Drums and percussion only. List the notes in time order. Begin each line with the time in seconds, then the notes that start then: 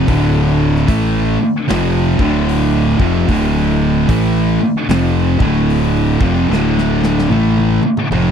0.08 kick, open hi-hat
0.76 snare
0.88 kick, open hi-hat
1.68 snare, open hi-hat
2.19 kick
2.49 open hi-hat
3.00 kick
3.28 kick, open hi-hat
4.09 kick, open hi-hat
4.89 snare, open hi-hat
5.40 kick
5.70 open hi-hat
6.21 kick
6.53 snare
6.78 snare
7.04 snare
7.19 snare
7.31 high tom
7.57 high tom
7.83 high tom
7.97 mid tom
8.12 mid tom